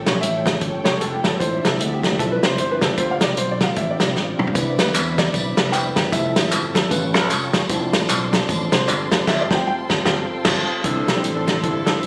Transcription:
Already playing: tonewheel organ F3 A3 C#4 G4, string section A4 C#5 G5
0.06 fingered electric bass B1, grand piano G3 C#4 F4 C#5, snare, closed hi-hat
0.21 fingered electric bass A1, grand piano E5, closed hi-hat
0.46 kick, snare, closed hi-hat
0.61 fingered electric bass G1, kick, closed hi-hat
0.84 fingered electric bass F1, grand piano G3 C#4 F4 C#5, snare, closed hi-hat
1.01 fingered electric bass F1, grand piano A4, closed hi-hat
1.14 grand piano G4
1.24 fingered electric bass G1, grand piano A4, kick, snare, closed hi-hat
1.39 fingered electric bass A1, tonewheel organ D3 F3 C4 E4, grand piano F3 C4 E4 C5, string section D5 E5, kick, closed hi-hat
1.64 fingered electric bass C2, grand piano A4, snare, closed hi-hat
1.80 fingered electric bass D2, closed hi-hat
1.93 grand piano G4
2.03 kick, snare, closed hi-hat
2.18 fingered electric bass B1, grand piano F3 C4 E4 A4, kick, closed hi-hat
2.32 grand piano B4
2.43 fingered electric bass C2, grand piano C5, snare, closed hi-hat
2.58 fingered electric bass G1, grand piano C5, closed hi-hat
2.71 grand piano B4
2.81 fingered electric bass F1, grand piano A4, kick, snare, closed hi-hat
2.97 fingered electric bass G1, tonewheel organ G3 F4, grand piano A3 C4 F4 C5, string section G5, kick, closed hi-hat
3.11 grand piano F5
3.21 fingered electric bass C2, grand piano D5, snare, closed hi-hat
3.37 fingered electric bass B1, grand piano C5, closed hi-hat
3.51 grand piano D5
3.60 grand piano A3 C4 F4 F5, kick, snare, closed hi-hat
3.76 fingered electric bass A1, grand piano E5, kick, closed hi-hat
3.91 grand piano D5
3.99 fingered electric bass C2, snare, closed hi-hat
4.15 fingered electric bass A1, snare
4.39 fingered electric bass B1, mid tom
4.47 floor tom
4.55 fingered electric bass C2, grand piano B3 D4 E4, tonewheel organ B3 E4, string section E5 B5, kick, closed hi-hat, tambourine
4.78 fingered electric bass D2, grand piano B4, snare, closed hi-hat, tambourine
4.94 fingered electric bass E2, clap, closed hi-hat, tambourine
5.18 grand piano D5, kick, snare, closed hi-hat, tambourine
5.33 fingered electric bass B1, kick, closed hi-hat, tambourine
5.57 fingered electric bass C2, snare, closed hi-hat, tambourine
5.72 fingered electric bass F1, grand piano G5, clap, closed hi-hat, tambourine
5.96 fingered electric bass G1, kick, snare, closed hi-hat, tambourine
6.11 fingered electric bass F1, tonewheel organ F3 A4, grand piano G3 A3 E4 E5, string section A5, kick, closed hi-hat, tambourine
6.36 fingered electric bass A1, snare, closed hi-hat, tambourine
6.51 fingered electric bass G1, clap, closed hi-hat, tambourine
6.75 grand piano A4, kick, snare, closed hi-hat, tambourine
6.90 fingered electric bass A1, grand piano G3 C#4 F4 B4, tonewheel organ G3 C#4 F4, string section G5 C#6, kick, closed hi-hat, tambourine
7.14 fingered electric bass C#2, snare, closed hi-hat, tambourine
7.29 fingered electric bass F1, clap, closed hi-hat, tambourine
7.53 fingered electric bass G1, kick, snare, closed hi-hat, tambourine
7.69 fingered electric bass F1, grand piano F3 C4 E4, tonewheel organ F3 C4 D4 A4, string section D5 C6, kick, closed hi-hat, tambourine
7.93 fingered electric bass A1, snare, closed hi-hat, tambourine
8.09 fingered electric bass B1, clap, closed hi-hat, tambourine
8.33 kick, snare, closed hi-hat, tambourine
8.49 fingered electric bass A1, kick, closed hi-hat, tambourine
8.72 fingered electric bass C2, grand piano C5, snare, closed hi-hat, tambourine
8.87 fingered electric bass G1, grand piano D5, clap, closed hi-hat, tambourine
9.11 fingered electric bass F1, kick, snare, closed hi-hat, tambourine
9.27 fingered electric bass G1, tonewheel organ G3 F4, grand piano E5, string section G5 A5, kick, snare, crash
9.41 grand piano D5
9.50 fingered electric bass G1, grand piano A3 C4 F4, kick, snare
9.55 grand piano G5
9.67 grand piano G5
9.90 fingered electric bass G1, kick, snare
10.05 fingered electric bass G1, kick, snare
10.44 fingered electric bass G1, kick, snare, crash
10.84 fingered electric bass C2, grand piano C3 C4 D4 E4 A4, tonewheel organ E3 C4 D4 A4, saxophone section D4 E4 A4, string section D5 E5 A5 C6, kick, closed hi-hat
11.07 fingered electric bass B1, snare, closed hi-hat
11.16 grand piano C4 D4 E4 G4
11.23 fingered electric bass A1, closed hi-hat
11.36 grand piano C4 D4 E4 A4
11.47 kick, snare, closed hi-hat
11.62 fingered electric bass G1, grand piano C4 D4 E4 A4, saxophone section D4 E4 A4, kick, closed hi-hat
11.87 grand piano C4 D4 E4 A4, snare, closed hi-hat
12.02 fingered electric bass G1, closed hi-hat

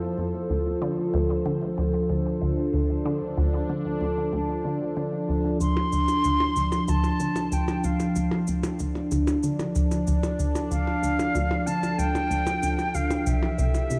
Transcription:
Already playing: analog synth pad F3 E4 A4 C5
0.18 synth arpeggio sound F2
0.50 synth arpeggio sound D2
0.82 synth arpeggio sound D3
1.14 synth arpeggio sound D2
1.46 synth arpeggio sound D3
1.51 analog synth pad D4
1.78 synth arpeggio sound D2
2.10 synth arpeggio sound D2
2.42 synth arpeggio sound D2
2.74 synth arpeggio sound D2
3.05 synth arpeggio sound D3
3.37 synth arpeggio sound D2
3.69 synth arpeggio sound D3
4.01 synth arpeggio sound D2
4.33 synth arpeggio sound D2
4.65 synth arpeggio sound D3
4.97 synth arpeggio sound D3
5.29 synth arpeggio sound D2
5.61 synth arpeggio sound D2, flute C6, shaker
5.77 percussion blips
5.92 synth arpeggio sound D2, shaker
6.08 percussion blips, shaker
6.24 synth arpeggio sound D2, shaker
6.40 percussion blips
6.56 synth arpeggio sound D2, shaker
6.72 percussion blips, shaker
6.88 synth arpeggio sound D2, flute A5, shaker
7.04 percussion blips, shaker
7.20 synth arpeggio sound D3, shaker
7.36 percussion blips, shaker
7.52 synth arpeggio sound D2, flute G5, shaker
7.68 percussion blips, shaker
7.84 synth arpeggio sound D2, flute F5, shaker
8.00 percussion blips, shaker
8.16 synth arpeggio sound D2, shaker
8.31 percussion blips
8.47 synth arpeggio sound D2, analog synth pad D4, shaker
8.63 percussion blips, shaker
8.79 synth arpeggio sound D2, shaker
8.95 percussion blips
9.11 synth arpeggio sound D2, shaker
9.27 percussion blips, shaker
9.43 synth arpeggio sound D3, shaker
9.59 percussion blips, shaker
9.75 synth arpeggio sound D2, shaker
9.91 percussion blips, shaker
10.07 synth arpeggio sound D2, shaker
10.23 percussion blips, shaker
10.39 synth arpeggio sound D2, shaker
10.55 percussion blips, shaker
10.71 synth arpeggio sound D2, flute F5, shaker
10.87 percussion blips
11.03 synth arpeggio sound D2, shaker
11.19 percussion blips, shaker
11.35 synth arpeggio sound D2, shaker
11.51 percussion blips
11.67 synth arpeggio sound D3, flute A5, shaker
11.83 percussion blips, shaker
11.99 synth arpeggio sound D2, flute G5, shaker
12.15 percussion blips, shaker
12.31 synth arpeggio sound D2, shaker
12.47 percussion blips, shaker
12.63 synth arpeggio sound D2, shaker
12.79 percussion blips, shaker
12.95 synth arpeggio sound D2, flute F5, shaker
13.11 percussion blips, shaker
13.26 synth arpeggio sound C2, analog synth pad E3, flute E5, shaker
13.43 percussion blips
13.58 synth arpeggio sound C2, analog synth pad G4, shaker
13.74 percussion blips, shaker
13.90 synth arpeggio sound C3, shaker

